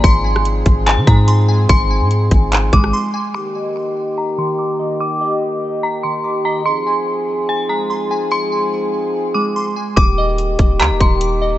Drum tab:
HH |x---x-x-x-x-x---|x---x-x-x-x-----|----------------|----------------|
CP |--------x-------|--------x-------|----------------|----------------|
SD |---r------------|-----------r----|----------------|----------------|
BD |o-----o---o-----|o-----o---o-----|----------------|----------------|

HH |----------------|----------------|x---x-x-x-x-x---|
CP |----------------|----------------|--------x-------|
SD |----------------|----------------|----------------|
BD |----------------|----------------|o-----o---o-----|